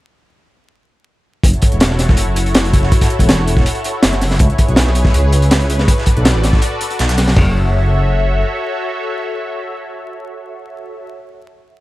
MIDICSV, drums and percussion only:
0, 0, Header, 1, 2, 480
1, 0, Start_track
1, 0, Key_signature, 3, "minor"
1, 0, Tempo, 370370
1, 1864, Time_signature, 4, 2, 24, 8
1, 15298, End_track
2, 0, Start_track
2, 0, Title_t, "Drums"
2, 1859, Note_on_c, 9, 36, 108
2, 1865, Note_on_c, 9, 42, 89
2, 1868, Note_off_c, 9, 42, 0
2, 1868, Note_on_c, 9, 42, 98
2, 1989, Note_off_c, 9, 36, 0
2, 1990, Note_off_c, 9, 42, 0
2, 1990, Note_on_c, 9, 42, 43
2, 2095, Note_off_c, 9, 42, 0
2, 2095, Note_on_c, 9, 42, 71
2, 2103, Note_off_c, 9, 42, 0
2, 2103, Note_on_c, 9, 42, 69
2, 2107, Note_on_c, 9, 36, 87
2, 2228, Note_off_c, 9, 42, 0
2, 2228, Note_on_c, 9, 42, 43
2, 2236, Note_off_c, 9, 36, 0
2, 2337, Note_off_c, 9, 42, 0
2, 2337, Note_on_c, 9, 42, 84
2, 2341, Note_off_c, 9, 42, 0
2, 2341, Note_on_c, 9, 38, 114
2, 2341, Note_on_c, 9, 42, 88
2, 2346, Note_off_c, 9, 38, 0
2, 2346, Note_on_c, 9, 38, 117
2, 2471, Note_off_c, 9, 38, 0
2, 2471, Note_off_c, 9, 42, 0
2, 2471, Note_on_c, 9, 38, 51
2, 2576, Note_on_c, 9, 42, 64
2, 2582, Note_off_c, 9, 38, 0
2, 2582, Note_on_c, 9, 38, 47
2, 2583, Note_off_c, 9, 42, 0
2, 2583, Note_on_c, 9, 42, 70
2, 2709, Note_off_c, 9, 38, 0
2, 2709, Note_on_c, 9, 38, 49
2, 2712, Note_off_c, 9, 42, 0
2, 2712, Note_on_c, 9, 36, 95
2, 2812, Note_on_c, 9, 42, 87
2, 2822, Note_off_c, 9, 42, 0
2, 2822, Note_on_c, 9, 42, 93
2, 2838, Note_off_c, 9, 38, 0
2, 2841, Note_off_c, 9, 36, 0
2, 2952, Note_off_c, 9, 42, 0
2, 3062, Note_on_c, 9, 42, 69
2, 3063, Note_off_c, 9, 42, 0
2, 3063, Note_on_c, 9, 42, 68
2, 3188, Note_off_c, 9, 42, 0
2, 3188, Note_on_c, 9, 42, 40
2, 3298, Note_off_c, 9, 42, 0
2, 3298, Note_on_c, 9, 42, 82
2, 3302, Note_off_c, 9, 42, 0
2, 3302, Note_on_c, 9, 38, 113
2, 3302, Note_on_c, 9, 42, 85
2, 3306, Note_off_c, 9, 38, 0
2, 3306, Note_on_c, 9, 38, 116
2, 3427, Note_off_c, 9, 38, 0
2, 3427, Note_on_c, 9, 38, 47
2, 3432, Note_off_c, 9, 42, 0
2, 3435, Note_on_c, 9, 42, 43
2, 3544, Note_off_c, 9, 42, 0
2, 3544, Note_on_c, 9, 36, 94
2, 3544, Note_on_c, 9, 42, 70
2, 3545, Note_off_c, 9, 42, 0
2, 3545, Note_on_c, 9, 42, 75
2, 3556, Note_off_c, 9, 38, 0
2, 3668, Note_on_c, 9, 38, 50
2, 3673, Note_off_c, 9, 36, 0
2, 3674, Note_off_c, 9, 42, 0
2, 3781, Note_on_c, 9, 42, 90
2, 3782, Note_on_c, 9, 36, 95
2, 3797, Note_off_c, 9, 38, 0
2, 3905, Note_off_c, 9, 42, 0
2, 3905, Note_on_c, 9, 42, 75
2, 3907, Note_off_c, 9, 36, 0
2, 3907, Note_on_c, 9, 36, 87
2, 3907, Note_on_c, 9, 38, 57
2, 4021, Note_off_c, 9, 42, 0
2, 4021, Note_on_c, 9, 42, 68
2, 4036, Note_off_c, 9, 36, 0
2, 4036, Note_off_c, 9, 38, 0
2, 4138, Note_on_c, 9, 36, 81
2, 4147, Note_off_c, 9, 42, 0
2, 4147, Note_on_c, 9, 42, 58
2, 4148, Note_off_c, 9, 42, 0
2, 4148, Note_on_c, 9, 42, 44
2, 4260, Note_off_c, 9, 42, 0
2, 4260, Note_on_c, 9, 38, 114
2, 4260, Note_on_c, 9, 42, 86
2, 4263, Note_off_c, 9, 38, 0
2, 4263, Note_on_c, 9, 38, 127
2, 4265, Note_off_c, 9, 42, 0
2, 4265, Note_on_c, 9, 42, 83
2, 4267, Note_off_c, 9, 36, 0
2, 4387, Note_off_c, 9, 38, 0
2, 4387, Note_on_c, 9, 38, 45
2, 4395, Note_off_c, 9, 42, 0
2, 4503, Note_on_c, 9, 42, 67
2, 4507, Note_off_c, 9, 42, 0
2, 4507, Note_on_c, 9, 42, 70
2, 4516, Note_off_c, 9, 38, 0
2, 4623, Note_on_c, 9, 36, 99
2, 4627, Note_on_c, 9, 38, 46
2, 4637, Note_off_c, 9, 42, 0
2, 4743, Note_on_c, 9, 42, 91
2, 4752, Note_off_c, 9, 36, 0
2, 4757, Note_off_c, 9, 38, 0
2, 4858, Note_off_c, 9, 42, 0
2, 4858, Note_on_c, 9, 42, 41
2, 4982, Note_off_c, 9, 42, 0
2, 4982, Note_on_c, 9, 42, 69
2, 4990, Note_off_c, 9, 42, 0
2, 4990, Note_on_c, 9, 42, 73
2, 5120, Note_off_c, 9, 42, 0
2, 5217, Note_on_c, 9, 38, 109
2, 5220, Note_off_c, 9, 38, 0
2, 5220, Note_on_c, 9, 38, 114
2, 5220, Note_on_c, 9, 42, 87
2, 5222, Note_off_c, 9, 42, 0
2, 5222, Note_on_c, 9, 42, 91
2, 5348, Note_off_c, 9, 38, 0
2, 5348, Note_on_c, 9, 38, 59
2, 5349, Note_off_c, 9, 42, 0
2, 5349, Note_on_c, 9, 42, 44
2, 5463, Note_off_c, 9, 42, 0
2, 5463, Note_on_c, 9, 42, 73
2, 5464, Note_off_c, 9, 38, 0
2, 5464, Note_on_c, 9, 38, 47
2, 5474, Note_on_c, 9, 46, 76
2, 5584, Note_off_c, 9, 38, 0
2, 5584, Note_on_c, 9, 38, 42
2, 5589, Note_off_c, 9, 38, 0
2, 5589, Note_on_c, 9, 38, 46
2, 5593, Note_off_c, 9, 42, 0
2, 5603, Note_off_c, 9, 46, 0
2, 5693, Note_on_c, 9, 42, 85
2, 5702, Note_on_c, 9, 36, 106
2, 5704, Note_off_c, 9, 42, 0
2, 5704, Note_on_c, 9, 42, 93
2, 5719, Note_off_c, 9, 38, 0
2, 5830, Note_off_c, 9, 42, 0
2, 5830, Note_on_c, 9, 42, 43
2, 5832, Note_off_c, 9, 36, 0
2, 5940, Note_off_c, 9, 42, 0
2, 5940, Note_on_c, 9, 42, 73
2, 5944, Note_off_c, 9, 42, 0
2, 5944, Note_on_c, 9, 36, 102
2, 5944, Note_on_c, 9, 42, 69
2, 6071, Note_off_c, 9, 42, 0
2, 6071, Note_on_c, 9, 42, 45
2, 6074, Note_off_c, 9, 36, 0
2, 6171, Note_on_c, 9, 38, 120
2, 6184, Note_off_c, 9, 38, 0
2, 6184, Note_off_c, 9, 42, 0
2, 6184, Note_on_c, 9, 38, 118
2, 6184, Note_on_c, 9, 42, 87
2, 6189, Note_off_c, 9, 42, 0
2, 6189, Note_on_c, 9, 42, 94
2, 6312, Note_off_c, 9, 38, 0
2, 6312, Note_on_c, 9, 38, 59
2, 6318, Note_off_c, 9, 42, 0
2, 6415, Note_on_c, 9, 42, 67
2, 6425, Note_off_c, 9, 42, 0
2, 6425, Note_on_c, 9, 42, 70
2, 6442, Note_off_c, 9, 38, 0
2, 6541, Note_on_c, 9, 36, 96
2, 6550, Note_on_c, 9, 38, 50
2, 6554, Note_off_c, 9, 42, 0
2, 6664, Note_on_c, 9, 42, 93
2, 6665, Note_off_c, 9, 42, 0
2, 6665, Note_on_c, 9, 42, 81
2, 6670, Note_off_c, 9, 36, 0
2, 6680, Note_off_c, 9, 38, 0
2, 6794, Note_off_c, 9, 42, 0
2, 6900, Note_on_c, 9, 42, 69
2, 6905, Note_off_c, 9, 42, 0
2, 6905, Note_on_c, 9, 42, 70
2, 7027, Note_off_c, 9, 42, 0
2, 7027, Note_on_c, 9, 42, 45
2, 7141, Note_off_c, 9, 42, 0
2, 7141, Note_on_c, 9, 42, 87
2, 7144, Note_off_c, 9, 42, 0
2, 7144, Note_on_c, 9, 38, 114
2, 7144, Note_on_c, 9, 42, 87
2, 7146, Note_off_c, 9, 38, 0
2, 7146, Note_on_c, 9, 38, 110
2, 7261, Note_off_c, 9, 42, 0
2, 7261, Note_on_c, 9, 42, 44
2, 7269, Note_off_c, 9, 38, 0
2, 7269, Note_on_c, 9, 38, 46
2, 7384, Note_off_c, 9, 42, 0
2, 7384, Note_on_c, 9, 42, 72
2, 7387, Note_off_c, 9, 42, 0
2, 7387, Note_on_c, 9, 42, 71
2, 7399, Note_off_c, 9, 38, 0
2, 7502, Note_on_c, 9, 38, 39
2, 7510, Note_off_c, 9, 38, 0
2, 7510, Note_on_c, 9, 38, 51
2, 7517, Note_off_c, 9, 42, 0
2, 7620, Note_on_c, 9, 36, 104
2, 7624, Note_on_c, 9, 42, 89
2, 7639, Note_off_c, 9, 38, 0
2, 7749, Note_off_c, 9, 36, 0
2, 7750, Note_on_c, 9, 38, 58
2, 7753, Note_off_c, 9, 42, 0
2, 7855, Note_on_c, 9, 42, 73
2, 7864, Note_off_c, 9, 42, 0
2, 7864, Note_on_c, 9, 36, 105
2, 7864, Note_on_c, 9, 42, 67
2, 7880, Note_off_c, 9, 38, 0
2, 7992, Note_off_c, 9, 42, 0
2, 7992, Note_on_c, 9, 42, 44
2, 7993, Note_off_c, 9, 36, 0
2, 8100, Note_off_c, 9, 42, 0
2, 8100, Note_on_c, 9, 42, 94
2, 8104, Note_off_c, 9, 42, 0
2, 8104, Note_on_c, 9, 38, 117
2, 8104, Note_on_c, 9, 42, 88
2, 8105, Note_off_c, 9, 38, 0
2, 8105, Note_on_c, 9, 38, 127
2, 8233, Note_off_c, 9, 38, 0
2, 8233, Note_on_c, 9, 38, 46
2, 8234, Note_off_c, 9, 42, 0
2, 8338, Note_on_c, 9, 42, 62
2, 8346, Note_off_c, 9, 42, 0
2, 8346, Note_on_c, 9, 42, 69
2, 8347, Note_off_c, 9, 38, 0
2, 8347, Note_on_c, 9, 38, 57
2, 8464, Note_on_c, 9, 36, 98
2, 8471, Note_off_c, 9, 38, 0
2, 8471, Note_on_c, 9, 38, 46
2, 8475, Note_off_c, 9, 42, 0
2, 8575, Note_on_c, 9, 42, 81
2, 8584, Note_off_c, 9, 42, 0
2, 8584, Note_on_c, 9, 42, 93
2, 8594, Note_off_c, 9, 36, 0
2, 8601, Note_off_c, 9, 38, 0
2, 8713, Note_off_c, 9, 42, 0
2, 8822, Note_on_c, 9, 42, 62
2, 8823, Note_off_c, 9, 42, 0
2, 8823, Note_on_c, 9, 42, 67
2, 8947, Note_off_c, 9, 42, 0
2, 8947, Note_on_c, 9, 42, 39
2, 9062, Note_off_c, 9, 42, 0
2, 9062, Note_on_c, 9, 38, 105
2, 9062, Note_on_c, 9, 42, 81
2, 9190, Note_off_c, 9, 38, 0
2, 9190, Note_off_c, 9, 42, 0
2, 9190, Note_on_c, 9, 38, 105
2, 9190, Note_on_c, 9, 42, 79
2, 9298, Note_on_c, 9, 46, 80
2, 9304, Note_off_c, 9, 38, 0
2, 9304, Note_off_c, 9, 42, 0
2, 9304, Note_on_c, 9, 38, 48
2, 9304, Note_on_c, 9, 42, 70
2, 9428, Note_off_c, 9, 46, 0
2, 9429, Note_off_c, 9, 38, 0
2, 9429, Note_on_c, 9, 38, 42
2, 9432, Note_off_c, 9, 38, 0
2, 9432, Note_on_c, 9, 38, 47
2, 9434, Note_off_c, 9, 42, 0
2, 9545, Note_on_c, 9, 36, 107
2, 9545, Note_on_c, 9, 43, 107
2, 9545, Note_on_c, 9, 52, 91
2, 9561, Note_off_c, 9, 38, 0
2, 9675, Note_off_c, 9, 36, 0
2, 9675, Note_off_c, 9, 43, 0
2, 9675, Note_off_c, 9, 52, 0
2, 15298, End_track
0, 0, End_of_file